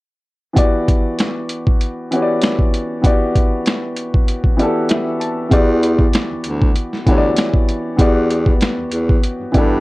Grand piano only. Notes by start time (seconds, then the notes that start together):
0.53 E3 B3 F#4 G4
0.58 D5
2.11 E3 B3 F#4 G4
2.16 C#5
2.22 D5
3.01 E3 B3 F#4 G4
3.06 D5
4.57 E3 B3 F#4 G4 D5
4.62 A4
4.90 E5
5.20 A5
5.48 E3 B3 F#4 G4
5.53 D5
7.06 E3 B3 F#4 G4
7.11 C#5
7.18 D5
7.96 E3 B3 F#4 G4
8.01 D5
9.52 E3 B3 F#4 G4 D5
9.57 A4